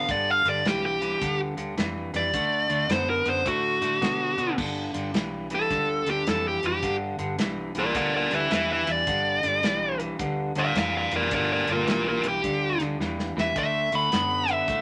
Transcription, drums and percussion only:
0.09 kick loud
0.09 closed hi-hat medium
0.45 closed hi-hat medium
0.65 snare loud
0.65 closed hi-hat medium
1.02 closed hi-hat medium
1.22 kick medium
1.22 closed hi-hat medium
1.58 closed hi-hat medium
1.78 snare loud
1.78 closed hi-hat medium
2.14 snare soft
2.14 closed hi-hat medium
2.34 kick loud
2.34 closed hi-hat medium
2.70 closed hi-hat medium
2.90 snare loud
2.90 closed hi-hat medium
3.25 closed hi-hat medium
3.46 kick loud
3.46 closed hi-hat medium
3.82 snare soft
3.82 closed hi-hat medium
4.02 kick medium
4.02 snare loud
4.02 closed hi-hat medium
4.38 closed hi-hat medium
4.58 kick loud
4.58 crash loud
4.94 closed hi-hat medium
5.14 snare loud
5.14 closed hi-hat medium
5.50 closed hi-hat medium
5.71 kick loud
5.71 snare soft
5.71 closed hi-hat medium
6.06 closed hi-hat medium
6.27 snare loud
6.27 closed hi-hat medium
6.63 closed hi-hat medium
6.83 kick loud
6.83 closed hi-hat medium
7.19 closed hi-hat medium
7.39 snare loud
7.39 closed hi-hat medium
7.75 closed hi-hat medium
7.95 kick loud
7.95 snare soft
7.95 closed hi-hat medium
8.31 snare soft
8.31 closed hi-hat medium
8.51 snare loud
8.51 closed hi-hat medium
8.87 closed hi-hat medium
9.07 kick loud
9.07 closed hi-hat medium
9.43 snare soft
9.43 closed hi-hat medium
9.63 snare loud
9.63 closed hi-hat medium
10.00 closed hi-hat medium
10.19 kick loud
10.19 closed hi-hat medium
10.55 closed hi-hat medium
10.75 snare loud
10.75 closed hi-hat medium
11.11 closed hi-hat medium
11.31 kick loud
11.31 closed hi-hat loud
11.67 closed hi-hat medium
11.88 snare loud
11.88 closed hi-hat medium
12.24 closed hi-hat medium
12.44 kick medium
12.44 closed hi-hat medium
12.80 snare soft
12.80 closed hi-hat medium
13.01 snare medium
13.19 snare medium
13.38 snare medium
13.56 kick loud
13.56 closed hi-hat medium
13.92 closed hi-hat medium
14.12 snare loud
14.12 closed hi-hat medium
14.48 closed hi-hat medium
14.68 kick loud
14.68 snare soft
14.68 closed hi-hat medium

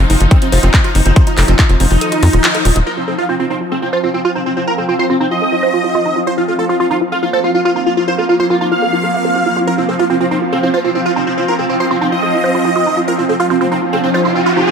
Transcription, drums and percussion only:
0.10 open hi-hat loud
0.20 closed hi-hat medium
0.31 kick loud
0.31 closed hi-hat medium
0.42 closed hi-hat medium
0.52 open hi-hat loud
0.63 closed hi-hat medium
0.74 kick loud
0.74 clap loud
0.74 closed hi-hat medium
0.84 closed hi-hat medium
0.95 open hi-hat loud
1.06 closed hi-hat medium
1.16 kick loud
1.16 closed hi-hat medium
1.27 closed hi-hat medium
1.38 clap medium
1.38 open hi-hat loud
1.48 closed hi-hat medium
1.59 kick loud
1.59 clap loud
1.59 closed hi-hat medium
1.69 closed hi-hat medium
1.80 open hi-hat loud
1.91 open hi-hat medium
2.01 closed hi-hat medium
2.12 closed hi-hat medium
2.23 open hi-hat loud
2.33 closed hi-hat medium
2.44 clap loud
2.44 closed hi-hat medium
2.55 closed hi-hat medium
2.65 open hi-hat loud
2.76 closed hi-hat medium
2.86 crash medium

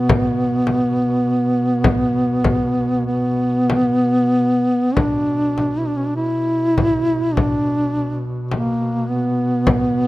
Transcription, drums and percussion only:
0.09 frame drum medium
0.67 frame drum medium
1.84 frame drum medium
2.44 frame drum medium
3.70 frame drum medium
4.97 frame drum medium
5.58 frame drum soft
6.78 frame drum medium
7.37 frame drum medium
8.51 frame drum soft
9.67 frame drum medium

